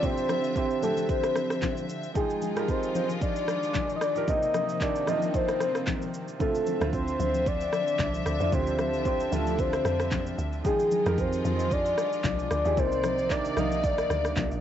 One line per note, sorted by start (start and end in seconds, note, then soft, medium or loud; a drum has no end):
0.00 0.02 D3 medium
0.00 2.11 D3 medium
0.00 0.46 D3 medium
0.00 2.11 F3 medium
0.00 0.03 C4 medium
0.00 2.11 C4 medium
0.00 0.46 C4 medium
0.00 0.04 E4 medium
0.00 0.47 E4 medium
0.00 2.17 F4 medium
0.00 0.56 C5 loud
0.00 2.11 E5 medium
0.00 kick loud
0.00 low conga medium
0.00 shaker medium
0.05 0.47 G4 medium
0.18 shaker medium
0.29 cross-stick medium
0.29 high conga medium
0.29 shaker medium
0.44 shaker medium
0.55 0.77 D3 medium
0.55 0.78 C4 medium
0.55 0.78 E4 medium
0.55 0.79 G4 medium
0.55 0.81 C5 medium
0.55 kick medium
0.55 shaker medium
0.71 shaker medium
0.82 1.68 D3 medium
0.82 1.68 C4 medium
0.82 1.69 E4 medium
0.82 1.69 G4 medium
0.82 1.08 A4 medium
0.82 high conga medium
0.82 shaker loud
0.97 high conga medium
0.97 shaker medium
1.09 1.85 C5 loud
1.09 kick loud
1.09 shaker medium
1.24 cross-stick medium
1.24 shaker medium
1.36 cross-stick medium
1.36 high conga medium
1.36 shaker medium
1.50 cross-stick medium
1.50 shaker medium
1.62 kick loud
1.62 clap medium
1.62 high conga medium
1.62 low conga medium
1.62 shaker medium
1.77 shaker medium
1.89 shaker medium
2.03 shaker medium
2.14 6.36 D#3 medium
2.14 2.47 F3 medium
2.14 4.26 F3 medium
2.14 4.26 G#3 medium
2.14 2.48 D#4 medium
2.14 4.26 F4 medium
2.14 2.71 G#4 loud
2.14 2.49 G#4 medium
2.14 2.48 G5 medium
2.14 kick loud
2.14 low conga medium
2.14 shaker medium
2.30 shaker soft
2.42 high conga medium
2.42 shaker medium
2.56 3.40 F3 medium
2.56 3.41 D#4 medium
2.56 3.41 G4 medium
2.56 3.42 A#4 medium
2.56 cross-stick medium
2.56 shaker medium
2.68 2.95 C5 loud
2.68 kick loud
2.68 shaker medium
2.83 shaker medium
2.95 3.08 C5 medium
2.95 high conga medium
2.95 shaker loud
3.10 high conga medium
3.10 shaker medium
3.22 3.92 D5 loud
3.22 kick loud
3.22 shaker medium
3.36 shaker medium
3.48 cross-stick medium
3.48 high conga soft
3.48 shaker medium
3.63 shaker medium
3.74 kick loud
3.74 clap medium
3.74 high conga medium
3.74 low conga medium
3.74 shaker medium
3.89 shaker medium
3.96 4.03 D#5 medium
4.01 4.30 D5 loud
4.01 cross-stick loud
4.01 shaker medium
4.15 4.25 F3 medium
4.15 4.25 D#4 medium
4.15 4.26 G4 medium
4.15 4.26 A#4 medium
4.15 shaker soft
4.27 4.71 C3 medium
4.27 6.38 C3 medium
4.27 4.71 A#3 medium
4.27 6.38 A#3 medium
4.27 6.38 C4 medium
4.27 4.72 C4 medium
4.27 4.72 D#4 medium
4.27 4.83 D#5 loud
4.27 kick loud
4.27 low conga medium
4.27 shaker medium
4.42 shaker medium
4.54 cross-stick medium
4.54 high conga medium
4.54 shaker medium
4.69 shaker medium
4.80 5.02 C3 medium
4.80 5.03 A#3 medium
4.80 5.03 D4 medium
4.80 5.03 D#4 medium
4.80 5.10 D5 loud
4.80 kick loud
4.80 clap medium
4.80 shaker medium
4.95 shaker medium
5.07 5.92 C3 medium
5.07 5.93 A#3 medium
5.07 5.93 D4 medium
5.07 5.94 F4 medium
5.07 5.36 D#5 loud
5.07 cross-stick medium
5.07 high conga medium
5.07 shaker loud
5.22 high conga medium
5.22 shaker medium
5.34 6.14 C5 loud
5.34 kick loud
5.34 shaker medium
5.48 cross-stick medium
5.48 shaker medium
5.60 cross-stick medium
5.60 high conga soft
5.60 shaker medium
5.75 cross-stick medium
5.75 shaker soft
5.87 kick loud
5.87 clap medium
5.87 high conga medium
5.87 low conga medium
5.87 shaker medium
6.02 shaker soft
6.14 shaker medium
6.28 shaker soft
6.39 6.72 D3 medium
6.39 10.61 D3 medium
6.39 10.61 F3 medium
6.39 6.72 C4 medium
6.39 8.50 C4 medium
6.39 6.73 E4 medium
6.39 6.73 F4 medium
6.39 6.90 A4 loud
6.39 10.61 E5 medium
6.39 kick loud
6.39 low conga medium
6.39 shaker medium
6.55 shaker medium
6.66 high conga medium
6.66 shaker medium
6.80 7.17 D2 medium
6.80 7.65 D3 medium
6.80 7.66 C4 medium
6.80 7.66 E4 medium
6.80 7.66 F4 medium
6.80 cross-stick medium
6.80 shaker soft
6.93 7.18 C5 loud
6.93 kick medium
6.93 shaker medium
7.08 shaker medium
7.20 7.69 D2 loud
7.20 7.49 C5 loud
7.20 high conga medium
7.20 shaker loud
7.34 high conga medium
7.34 shaker medium
7.46 8.26 D5 loud
7.46 kick loud
7.46 shaker medium
7.61 shaker medium
7.73 cross-stick medium
7.73 high conga medium
7.73 shaker medium
7.88 shaker medium
7.99 8.24 C2 medium
7.99 kick loud
7.99 clap medium
7.99 high conga medium
7.99 low conga medium
7.99 shaker medium
8.14 shaker medium
8.26 8.39 D2 medium
8.26 8.55 D5 loud
8.26 cross-stick medium
8.26 shaker medium
8.40 8.52 F2 medium
8.40 8.50 D3 medium
8.40 8.50 C4 medium
8.40 8.50 E4 medium
8.40 8.51 F4 medium
8.40 shaker soft
8.51 9.28 D2 loud
8.51 8.96 D3 medium
8.51 8.96 C4 medium
8.51 10.63 D4 medium
8.51 8.96 E4 medium
8.51 8.97 G4 medium
8.51 9.06 C5 loud
8.51 kick loud
8.51 low conga medium
8.51 shaker medium
8.67 shaker medium
8.79 cross-stick medium
8.79 high conga medium
8.79 shaker medium
8.94 shaker medium
9.05 9.27 D3 medium
9.05 9.27 C4 medium
9.05 9.28 E4 medium
9.05 9.28 G4 medium
9.05 9.27 C5 loud
9.05 kick medium
9.05 shaker medium
9.20 shaker medium
9.27 9.34 C5 medium
9.31 9.81 D2 loud
9.31 10.17 D3 medium
9.31 10.18 C4 medium
9.31 10.18 E4 medium
9.31 10.18 F4 medium
9.31 9.61 A4 medium
9.31 high conga medium
9.31 shaker loud
9.47 high conga medium
9.47 shaker medium
9.59 10.39 C5 loud
9.59 kick loud
9.59 shaker medium
9.73 cross-stick medium
9.73 shaker medium
9.85 10.34 F2 medium
9.85 cross-stick medium
9.85 high conga soft
9.85 shaker medium
10.00 cross-stick medium
10.00 shaker medium
10.11 kick loud
10.11 clap medium
10.11 high conga medium
10.11 low conga medium
10.11 shaker medium
10.27 shaker medium
10.38 10.63 D2 medium
10.38 shaker medium
10.53 shaker soft
10.64 12.75 D#3 medium
10.64 10.97 F3 medium
10.64 12.75 F3 medium
10.64 12.75 G#3 medium
10.64 10.97 D#4 medium
10.64 12.75 F4 medium
10.64 11.20 G#4 medium
10.64 10.98 G#4 medium
10.64 10.98 G5 medium
10.64 kick loud
10.64 low conga medium
10.64 shaker medium
10.79 shaker medium
10.91 high conga medium
10.91 shaker medium
11.05 11.41 F2 loud
11.05 11.90 F3 medium
11.05 11.91 D#4 medium
11.05 11.91 G4 medium
11.05 11.91 A#4 medium
11.05 cross-stick medium
11.05 shaker medium
11.18 11.45 C5 loud
11.18 kick loud
11.18 shaker medium
11.32 shaker medium
11.45 11.94 F2 loud
11.45 11.74 C5 medium
11.45 high conga medium
11.45 shaker loud
11.59 high conga medium
11.59 shaker medium
11.71 12.51 D5 loud
11.71 kick loud
11.71 shaker medium
11.86 shaker medium
11.98 cross-stick medium
11.98 high conga soft
11.98 shaker medium
12.13 shaker medium
12.24 12.49 C2 loud
12.24 kick loud
12.24 clap medium
12.24 high conga medium
12.24 low conga medium
12.24 shaker medium
12.39 shaker medium
12.51 12.64 D2 medium
12.51 12.80 D5 loud
12.51 cross-stick loud
12.51 shaker medium
12.65 12.79 D#2 medium
12.65 12.74 F3 medium
12.65 12.75 D#4 medium
12.65 12.75 G4 medium
12.65 12.76 G#4 medium
12.65 shaker medium
12.76 13.53 C2 loud
12.76 13.20 C3 medium
12.76 14.61 C3 medium
12.76 14.61 D#3 medium
12.76 14.61 A#3 medium
12.76 13.21 A#3 medium
12.76 13.21 D#4 medium
12.76 13.33 C5 loud
12.76 14.61 D5 medium
12.76 13.22 D5 medium
12.76 kick loud
12.76 low conga medium
12.76 shaker medium
12.92 shaker medium
13.04 cross-stick loud
13.04 high conga medium
13.04 shaker medium
13.18 shaker medium
13.30 13.52 C3 medium
13.30 13.52 A#3 medium
13.30 13.53 D#4 medium
13.30 13.59 D5 loud
13.30 13.53 D5 medium
13.30 kick medium
13.30 clap medium
13.30 shaker medium
13.45 shaker medium
13.56 14.06 C2 medium
13.56 14.42 C3 medium
13.56 14.42 A#3 medium
13.56 14.43 D#4 medium
13.56 13.86 D#5 loud
13.56 14.43 F5 medium
13.56 cross-stick medium
13.56 high conga medium
13.56 shaker loud
13.72 high conga medium
13.72 shaker medium
13.84 14.61 D5 loud
13.84 kick loud
13.84 shaker medium
13.98 cross-stick medium
13.98 shaker medium
14.10 14.34 D2 medium
14.10 cross-stick medium
14.10 high conga soft
14.10 shaker medium
14.25 cross-stick medium
14.25 shaker soft
14.36 14.50 C2 medium
14.36 kick loud
14.36 clap medium
14.36 high conga medium
14.36 low conga medium
14.36 shaker medium
14.51 14.61 A#1 medium
14.51 shaker medium